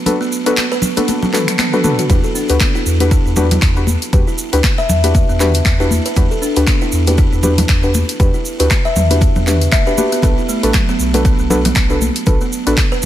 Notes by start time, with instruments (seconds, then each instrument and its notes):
0.06 synth stab D4 F#4 A4 B4, closed hi-hat, high conga, low conga, cabasa
0.21 kalimba B3, cabasa
0.32 cabasa
0.46 kalimba B3, synth stab D4 F#4 A4 B4, closed hi-hat, cabasa
0.57 finger snap, clap, closed hi-hat, high conga, cabasa
0.72 kalimba B4, cabasa
0.82 low conga, cabasa
0.97 kalimba B3, synth stab D4 F#4 A4 B4, closed hi-hat, high conga, cabasa
1.08 closed hi-hat, high tom, high conga, cabasa
1.22 kalimba F#3, high tom, low conga, cabasa
1.33 synth stab D4 F#4 A4 B4, clap, mid tom, cabasa
1.48 finger snap, closed hi-hat, mid tom, cabasa
1.59 kalimba B3, finger snap, clap, closed hi-hat, mid tom, high conga, cabasa
1.73 kalimba B3, synth stab D4 F#4 A4 B4, mid tom, cabasa
1.84 synth stab D4 F#4 A4 B4, mid tom, high conga, cabasa
1.99 kalimba F#4, closed hi-hat, mid tom, cabasa
2.10 analog synth bass E2, synth stab D4 F#4 G4 B4, kalimba E4, kick, closed hi-hat, high conga, low conga, cabasa
2.24 kalimba A4, cabasa
2.35 kalimba D4, cabasa
2.49 analog synth bass D2, synth stab D4 F#4 G4 B4, closed hi-hat, cabasa
2.60 kalimba B3, finger snap, kick, clap, closed hi-hat, high conga, cabasa
2.75 kalimba E4, cabasa
2.86 analog synth bass E2, cabasa
3.00 synth stab D4 F#4 G4 B4, kalimba E4, closed hi-hat, high conga, cabasa
3.11 kalimba E4, kick, closed hi-hat, cabasa
3.26 analog synth bass E2, kalimba E4, cabasa
3.36 synth stab D4 F#4 G4 B4, high conga, low conga, cabasa
3.51 kalimba E4, closed hi-hat, mid tom, low conga, cabasa
3.62 analog synth bass E2, finger snap, kick, clap, closed hi-hat, cabasa
3.76 synth stab D4 F#4 G4 B4, cabasa
3.87 high conga, cabasa
4.02 closed hi-hat, cabasa
4.13 analog synth bass E2, synth stab D4 F#4 G4 B4, kick, closed hi-hat, high conga, low conga, cabasa
4.27 kalimba E4, cabasa
4.38 cabasa
4.53 analog synth bass D2, synth stab D4 F#4 G4 B4, kalimba E4, closed hi-hat, cabasa
4.64 finger snap, kick, clap, closed hi-hat, high conga, cabasa
4.78 kalimba E5, cabasa
4.89 analog synth bass E2, low conga, cabasa
5.04 synth stab D4 F#4 G4 B4, kalimba E4, closed hi-hat, high conga, cabasa
5.15 kick, closed hi-hat, high conga, cabasa
5.29 analog synth bass E2, kalimba B3, cabasa
5.40 synth stab D4 F#4 G4 B4, clap, mid tom, cabasa
5.54 closed hi-hat, cabasa
5.65 analog synth bass E2, finger snap, kick, clap, closed hi-hat, high conga, cabasa
5.80 synth stab D4 F#4 G4 B4, kalimba E4, cabasa
5.91 high conga, cabasa
6.06 kalimba B4, closed hi-hat, cabasa
6.16 analog synth bass E2, synth stab D4 F#4 G4 B4, kalimba E4, kick, closed hi-hat, high conga, low conga, cabasa
6.31 kalimba A4, cabasa
6.42 kalimba D4, cabasa
6.56 analog synth bass D2, synth stab D4 F#4 G4 B4, closed hi-hat, cabasa
6.67 kalimba B3, finger snap, kick, clap, closed hi-hat, high conga, cabasa
6.81 kalimba E4, cabasa
6.92 analog synth bass E2, cabasa
7.07 synth stab D4 F#4 G4 B4, kalimba E4, closed hi-hat, high conga, cabasa
7.18 kalimba E4, kick, closed hi-hat, cabasa
7.33 analog synth bass E2, kalimba E4, cabasa
7.43 synth stab D4 F#4 G4 B4, high conga, low conga, cabasa
7.58 kalimba E4, closed hi-hat, mid tom, low conga, cabasa
7.69 analog synth bass E2, finger snap, kick, clap, closed hi-hat, cabasa
7.83 synth stab D4 F#4 G4 B4, cabasa
7.94 high conga, cabasa
8.09 closed hi-hat, cabasa
8.20 analog synth bass E2, synth stab D4 F#4 G4 B4, kick, closed hi-hat, high conga, low conga, cabasa
8.34 kalimba E4, cabasa
8.45 cabasa
8.60 analog synth bass D2, synth stab D4 F#4 G4 B4, kalimba E4, closed hi-hat, cabasa
8.70 finger snap, kick, clap, closed hi-hat, high conga, cabasa
8.85 kalimba E5, cabasa
8.96 analog synth bass E2, mid tom, low conga, cabasa
9.11 synth stab D4 F#4 G4 B4, kalimba E4, closed hi-hat, high conga, cabasa
9.21 kick, closed hi-hat, high conga, cabasa
9.36 analog synth bass E2, kalimba B3, low conga, cabasa
9.47 synth stab D4 F#4 G4 B4, clap, mid tom, cabasa
9.61 closed hi-hat, cabasa
9.72 analog synth bass E1, kalimba E5, finger snap, kick, clap, closed hi-hat, high conga, cabasa
9.87 synth stab D4 F#4 G4 B4, kalimba B4, cabasa
9.98 synth stab D4 F#4 G4 B4, kalimba G4, high conga, cabasa
10.12 kalimba B3, closed hi-hat, cabasa
10.22 analog synth bass B1, kalimba B3, synth stab D4 F#4 A4 B4, kick, closed hi-hat, high conga, low conga, cabasa
10.38 kalimba E4, cabasa
10.49 kalimba A3, cabasa
10.63 analog synth bass A1, synth stab D4 F#4 A4 B4, closed hi-hat, cabasa
10.73 kalimba F#3, finger snap, kick, clap, closed hi-hat, high conga, cabasa
10.89 kalimba B3, cabasa
10.99 analog synth bass B1, cabasa
11.14 kalimba B3, synth stab D4 F#4 A4 B4, closed hi-hat, high conga, cabasa
11.25 kalimba B3, kick, closed hi-hat, cabasa
11.39 analog synth bass B1, kalimba B3, cabasa
11.50 synth stab D4 F#4 A4 B4, high conga, low conga, cabasa
11.65 kalimba B3, closed hi-hat, mid tom, low conga, cabasa
11.75 analog synth bass B1, finger snap, kick, clap, closed hi-hat, cabasa
11.90 synth stab D4 F#4 A4 B4, cabasa
12.01 high conga, cabasa
12.16 closed hi-hat, cabasa
12.26 analog synth bass B1, synth stab D4 F#4 A4 B4, kick, closed hi-hat, high conga, low conga, cabasa
12.41 kalimba B3, cabasa
12.52 cabasa
12.67 analog synth bass A1, kalimba B3, synth stab D4 F#4 A4 B4, closed hi-hat, cabasa
12.77 finger snap, kick, clap, closed hi-hat, high conga, cabasa
12.92 kalimba B4, cabasa
13.02 cabasa